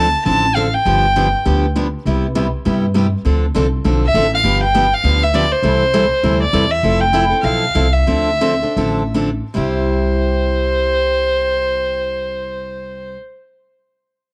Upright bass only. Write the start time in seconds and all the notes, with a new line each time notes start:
Already playing: D2
0.26 A1
0.86 G1
1.46 D2
2.05 C2
2.66 G2
3.25 D2
3.55 C2
3.85 B1
4.14 A1
4.44 G1
5.04 D2
5.63 C2
6.23 D2
6.53 E2
6.83 F1
7.43 B1
7.75 C2
8.07 D2
8.76 A1
9.56 C2